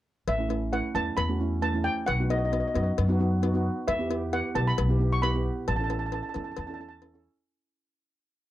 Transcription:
0.28 A1 E5, cowbell
0.38 A3 C#4 E4
0.49 A3 C#4 E4, cowbell
0.72 A3 C#4 E4 F#5, cowbell
0.94 E2 A3 C#4 E4 A5, cowbell
1.17 E2 B5, cowbell
1.29 A3 C#4 F#4
1.40 A3 C#4 E4
1.62 A3 C#4 E4 A5, cowbell
1.74 A3 C#4 E4
1.84 G5
2.06 B1 F#5, cowbell
2.19 B3 D#4 F#4
2.29 B3 D#4 F#4 D#5, cowbell
2.38 D#5
2.45 D#5
2.52 B3 D#4 F#4 D#5, cowbell
2.60 D#5
2.68 D#5
2.74 F#2 B3 D#4 F#4 D#5, cowbell
2.83 D#5
2.98 F#2, cowbell
3.08 B3 D#4 F#4
3.19 B3 D#4 F#4
3.42 B3 D#4 F#4, cowbell
3.54 B3 D#4 F#4
3.88 E2 E5, cowbell
3.99 B3 E4 G4
4.09 B3 E4 G4, cowbell
4.32 B3 E4 G4 F#5, cowbell
4.55 B1 B3 E4 G4 A5, cowbell
4.67 B5
4.78 B1, cowbell
4.88 B3 E4 G4
4.99 B3 E4 G4
5.13 C#6
5.22 B3 E4 G4 B5, cowbell
5.34 B3 E4 G4
5.68 A1 A5, cowbell
5.76 C#4 E4 A5
5.81 A4 A5
5.89 C#4 E4 A4 A5, cowbell
5.99 A5
6.06 A5
6.12 C#4 E4 A4 A5, cowbell
6.23 A5
6.29 A5
6.34 E2 C#4 E4 A4 A5, cowbell
6.44 A5
6.52 A5
6.57 E2 A5, cowbell
6.67 C#4 E4 A4 A5
6.74 A5
6.79 C#4 E4 A4 A5
6.89 A5
7.02 C#4 E4 A4, cowbell
7.14 C#4 E4 A4

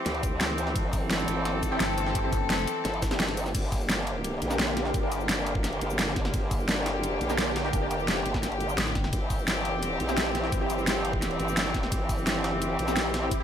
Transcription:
Already playing: E3 C4 G4
0.06 D2, snare, closed hi-hat, ride
0.15 ride
0.23 kick, closed hi-hat, ride, cabasa
0.41 snare, closed hi-hat, ride
0.49 snare
0.58 closed hi-hat, ride, cabasa
0.67 snare
0.76 G1 A4, kick, closed hi-hat, ride
0.93 kick, closed hi-hat, open hi-hat, cabasa
1.10 G1, snare, closed hi-hat, ride
1.19 cabasa
1.28 G1, closed hi-hat, ride, cabasa
1.45 snare, closed hi-hat, ride
1.63 kick, closed hi-hat, ride, cabasa
1.72 C4 E4 G4
1.80 G1, snare, closed hi-hat, ride
1.98 closed hi-hat, ride, cabasa
2.06 C4 E4 G4, snare
2.15 kick, closed hi-hat, ride
2.24 C4 E4 G4
2.33 kick, closed hi-hat, ride, cabasa
2.41 F#1
2.50 snare, closed hi-hat, ride
2.59 cabasa
2.67 closed hi-hat, ride, cabasa
2.85 G1, snare, closed hi-hat, ride
2.94 ride
3.02 kick, snare, closed hi-hat, ride, cabasa
3.11 C4 E4 G4, snare, ride, cabasa
3.20 snare, closed hi-hat, ride
3.29 snare, ride
3.37 closed hi-hat, open hi-hat, cabasa
3.46 snare, cabasa
3.55 G1 D3 A#3 G4, kick, closed hi-hat, crash, ride, cabasa
3.72 kick, closed hi-hat, open hi-hat, cabasa
3.81 cabasa
3.90 snare, closed hi-hat, ride, cabasa
4.07 closed hi-hat, ride
4.24 closed hi-hat, ride, cabasa
4.42 A#1, closed hi-hat, ride, cabasa
4.51 A#3 D4 G4, snare, cabasa
4.59 snare, closed hi-hat, ride, cabasa
4.77 snare, closed hi-hat, ride
4.85 A#3 D4 G4, snare
4.94 G1, kick, closed hi-hat, ride, cabasa
5.03 A#3 D4 G4
5.12 closed hi-hat, ride, cabasa
5.20 cabasa
5.29 snare, closed hi-hat, ride, cabasa
5.46 closed hi-hat, ride
5.55 F#1, kick
5.64 snare, closed hi-hat, ride, cabasa
5.73 ride
5.81 G1, closed hi-hat, ride, cabasa
5.90 cabasa
5.99 snare, closed hi-hat, ride, cabasa
6.08 snare
6.16 kick, snare, closed hi-hat, ride
6.25 snare
6.34 G1, kick, closed hi-hat, ride, cabasa
6.51 kick, closed hi-hat, open hi-hat, cabasa
6.60 cabasa
6.69 snare, closed hi-hat, ride, cabasa
6.86 snare, closed hi-hat, ride
6.95 F#1
7.04 closed hi-hat, ride, cabasa
7.21 A#1, closed hi-hat, ride, cabasa
7.30 A#3 D4 G4, snare, cabasa
7.38 snare, closed hi-hat, ride, cabasa
7.56 snare, closed hi-hat, ride
7.65 A#3 D4 G4, snare
7.73 F1, kick, closed hi-hat, ride, cabasa
7.82 A#3 D4 G4
7.91 closed hi-hat, ride, cabasa
7.99 cabasa
8.08 snare, closed hi-hat, ride, cabasa
8.26 G1, closed hi-hat, ride
8.34 kick, snare
8.43 snare, closed hi-hat, ride, cabasa
8.52 ride
8.60 closed hi-hat, ride, cabasa
8.69 cabasa
8.78 A1, snare, closed hi-hat, ride, cabasa
8.87 snare, cabasa
8.95 kick, snare, closed hi-hat, ride
9.04 snare
9.13 G1 E3 C4, kick, closed hi-hat, ride, cabasa
9.30 kick, closed hi-hat, open hi-hat, cabasa
9.39 cabasa
9.48 snare, closed hi-hat, ride, cabasa
9.65 closed hi-hat, ride
9.83 closed hi-hat, ride, cabasa
10.00 A#1, closed hi-hat, ride, cabasa
10.09 C4 E4 G4, snare, cabasa
10.17 snare, closed hi-hat, ride, cabasa
10.35 snare, closed hi-hat, ride
10.44 C4 E4 G4, snare
10.52 G1, kick, closed hi-hat, ride, cabasa
10.61 C4 E4 G4
10.70 closed hi-hat, ride, cabasa
10.79 cabasa
10.87 snare, closed hi-hat, ride, cabasa
11.05 closed hi-hat, ride
11.13 kick
11.22 snare, closed hi-hat, ride, cabasa
11.31 ride
11.40 G1, closed hi-hat, ride, cabasa
11.48 cabasa
11.57 snare, closed hi-hat, ride, cabasa
11.66 snare
11.74 kick, snare, closed hi-hat, ride
11.83 snare
11.92 G1, kick, closed hi-hat, ride, cabasa
12.09 kick, closed hi-hat, open hi-hat, cabasa
12.18 cabasa
12.27 snare, closed hi-hat, ride, cabasa
12.44 snare, closed hi-hat, ride
12.53 F#1
12.62 closed hi-hat, ride, cabasa
12.79 A#1, closed hi-hat, ride, cabasa
12.88 C4 E4 G4, snare, cabasa
12.96 snare, closed hi-hat, ride, cabasa
13.14 snare, closed hi-hat, ride
13.23 C4 E4 G4
13.31 kick, closed hi-hat, ride, cabasa
13.40 C4 E4 G4

